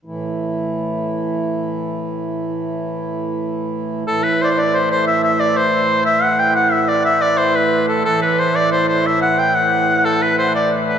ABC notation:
X:1
M:6/8
L:1/16
Q:3/8=120
K:Ador
V:1 name="Shawm"
z12 | z12 | z12 | z12 |
A2 B2 c/2 d/2 c d2 c2 c2 | e2 e2 d2 c6 | e2 f2 g2 f2 e2 d2 | e2 d2 c2 B4 A2 |
A2 B2 c2 d2 c2 c2 | e2 f2 g2 f6 | A2 B2 c2 d2 z2 B2 |]
V:2 name="Harmonium" clef=bass
[A,,E,]12- | [A,,E,]12- | [A,,E,]12- | [A,,E,]12 |
[A,,E,]12- | [A,,E,]12- | [A,,E,]12- | [A,,E,]12 |
[A,,E,]12- | [A,,E,]12- | [A,,E,]12 |]